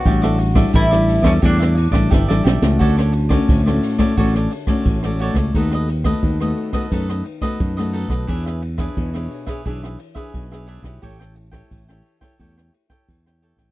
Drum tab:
CC |----------------|x---------------|----------------|----------------|
RD |x-xxx-xxx-xx----|--xxx-xxx-xxx-xx|x-xxx-xxx-xxx-xx|x-xxx-xxx-xxx-xx|
SD |-r-r-r-r-r-roooo|-r-r-r-r-r-r-r-r|-r-r-r-r-r-r-r-r|-r-r-r-r-r-r-r-r|
BD |o--oo--oo--oo---|o--oo--oo--oo--o|o--oo--oo--oo--o|o--oo--oo--oo--o|

CC |----------------|
RD |x-xxx-xxx-xxx-xx|
SD |-r-r-r-r-r-r-r-r|
BD |o--oo--oo--oo--o|